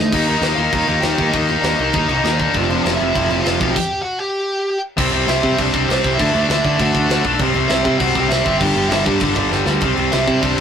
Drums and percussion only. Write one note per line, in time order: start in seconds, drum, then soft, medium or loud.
0.12 kick loud
0.12 crash loud
0.12 crash medium
0.28 crash medium
0.42 snare loud
0.42 crash medium
0.58 crash medium
0.72 kick loud
0.72 crash medium
0.87 crash medium
1.02 snare loud
1.02 crash medium
1.18 kick medium
1.18 crash medium
1.33 kick loud
1.33 crash medium
1.48 crash medium
1.63 snare loud
1.63 crash medium
1.79 crash medium
1.93 kick loud
1.93 crash medium
2.09 crash medium
2.25 snare loud
2.25 crash medium
2.40 kick medium
2.40 crash medium
2.54 kick loud
2.54 crash medium
2.70 crash medium
2.86 snare loud
2.86 crash medium
3.00 crash medium
3.16 kick loud
3.16 crash medium
3.30 crash medium
3.46 snare loud
3.46 crash medium
3.60 kick medium
3.60 crash medium
3.76 kick loud
3.76 crash loud
4.98 kick loud
4.98 crash loud
4.98 crash medium
5.14 crash medium
5.28 snare loud
5.28 crash medium
5.43 kick medium
5.43 crash medium
5.59 kick loud
5.59 crash loud
5.74 kick medium
5.74 crash medium
5.90 snare loud
5.90 crash medium
6.04 kick medium
6.04 crash medium
6.19 kick loud
6.19 crash medium
6.35 crash medium
6.50 snare loud
6.50 crash medium
6.65 kick medium
6.65 crash medium
6.79 kick loud
6.79 crash medium
6.95 kick medium
6.95 crash medium
7.10 snare loud
7.10 crash medium
7.24 kick medium
7.24 crash medium
7.39 kick loud
7.39 crash medium
7.54 crash medium
7.69 snare loud
7.69 crash medium
7.85 kick medium
7.85 crash medium
8.00 kick loud
8.00 crash medium
8.15 kick loud
8.15 crash medium
8.31 snare loud
8.31 crash medium
8.46 kick medium
8.46 crash medium
8.61 kick loud
8.61 crash loud
8.77 crash medium
8.91 snare loud
8.91 crash loud
9.06 kick medium
9.06 crash medium
9.20 kick loud
9.20 crash medium
9.36 kick medium
9.36 crash medium
9.52 snare medium
9.66 snare medium
9.81 kick loud
9.81 crash medium
9.97 crash medium
10.12 snare loud
10.12 crash medium
10.27 kick medium
10.27 crash medium
10.43 kick loud
10.43 crash medium